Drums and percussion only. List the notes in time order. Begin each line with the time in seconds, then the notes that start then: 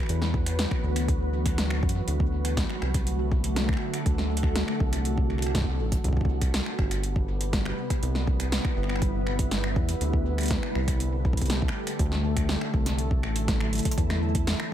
0.03 finger snap
0.06 finger snap, closed hi-hat
0.22 snare
0.34 kick
0.46 finger snap, closed hi-hat
0.59 snare, closed hi-hat
0.71 finger snap, kick
0.96 finger snap, closed hi-hat
1.08 kick, closed hi-hat
1.46 finger snap, kick, closed hi-hat
1.58 snare, closed hi-hat
1.70 finger snap
1.83 kick
1.89 closed hi-hat
2.08 closed hi-hat
2.20 kick
2.45 finger snap, closed hi-hat
2.57 kick, snare, closed hi-hat
2.70 finger snap
2.82 finger snap
2.94 finger snap, kick, closed hi-hat
3.07 closed hi-hat
3.32 kick
3.44 closed hi-hat
3.56 snare, closed hi-hat
3.69 finger snap, kick
3.73 finger snap
3.77 finger snap
3.94 finger snap, closed hi-hat
4.06 kick, closed hi-hat
4.18 snare
4.37 closed hi-hat
4.43 finger snap, kick
4.56 snare, closed hi-hat
4.68 finger snap
4.80 kick
4.93 finger snap, closed hi-hat
5.05 closed hi-hat
5.18 kick
5.30 finger snap
5.38 finger snap
5.42 closed hi-hat
5.46 finger snap
5.55 kick, snare, closed hi-hat
5.58 kick
5.61 kick
5.64 kick
5.92 kick, closed hi-hat
6.04 kick, closed hi-hat
6.08 kick
6.13 kick
6.17 kick
6.21 kick
6.25 kick
6.41 finger snap, kick, closed hi-hat
6.54 snare, closed hi-hat
6.66 finger snap
6.79 finger snap, kick
6.91 finger snap, closed hi-hat
7.03 closed hi-hat
7.16 kick
7.41 closed hi-hat
7.53 kick, snare, closed hi-hat
7.65 finger snap
7.90 finger snap, kick, closed hi-hat
8.03 closed hi-hat
8.15 snare
8.27 kick
8.40 finger snap, closed hi-hat
8.52 snare, closed hi-hat
8.65 finger snap, kick
8.83 finger snap
8.89 finger snap
8.96 finger snap
9.02 kick, closed hi-hat
9.27 finger snap
9.39 kick, closed hi-hat
9.51 snare, closed hi-hat
9.64 finger snap
9.76 kick
9.89 closed hi-hat
10.01 closed hi-hat
10.13 kick
10.38 finger snap, closed hi-hat
10.41 closed hi-hat
10.43 closed hi-hat
10.46 closed hi-hat
10.48 kick, snare, closed hi-hat
10.51 closed hi-hat
10.63 finger snap
10.75 finger snap
10.88 finger snap, kick, closed hi-hat
11.00 closed hi-hat
11.25 kick
11.33 kick
11.37 closed hi-hat
11.41 kick, closed hi-hat
11.46 closed hi-hat
11.50 snare, closed hi-hat
11.62 kick
11.68 finger snap
11.87 finger snap, closed hi-hat
11.99 kick, closed hi-hat
12.12 snare
12.37 finger snap, kick, closed hi-hat
12.49 snare
12.61 finger snap
12.74 kick
12.86 snare, closed hi-hat
12.99 closed hi-hat
13.11 kick
13.23 finger snap
13.36 closed hi-hat
13.48 kick, snare, closed hi-hat
13.61 finger snap
13.73 closed hi-hat
13.75 closed hi-hat
13.78 closed hi-hat
13.80 closed hi-hat
13.83 closed hi-hat
13.85 kick, closed hi-hat
13.91 closed hi-hat
13.98 kick, closed hi-hat
14.10 finger snap, snare
14.35 kick, closed hi-hat
14.47 finger snap, snare, closed hi-hat
14.60 finger snap